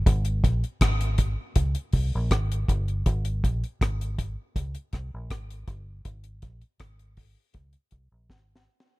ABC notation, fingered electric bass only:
X:1
M:4/4
L:1/16
Q:1/4=80
K:Dblyd
V:1 name="Fingered electric bass" clef=bass
A,,,2 B,,, z A,,,3 z D,, z C,, B,,, A,,,2 G,,,2 | A,,,2 B,,, z A,,,3 z D,, z C,, B,,, A,,,2 G,,,2 | A,,,2 B,,, z A,,,3 z D,, z C,, B,,, A,,,2 z2 |]